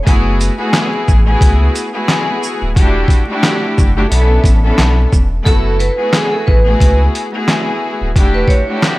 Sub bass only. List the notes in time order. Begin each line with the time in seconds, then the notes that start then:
0.07 F#1
1.08 A1
1.41 C#2
2.62 D1
2.76 E1
3.78 F#1
4.11 B1
4.44 A1
4.79 B1
5.13 E1
5.46 F#1
6.48 A1
6.80 C#2
8.01 D1
8.16 E1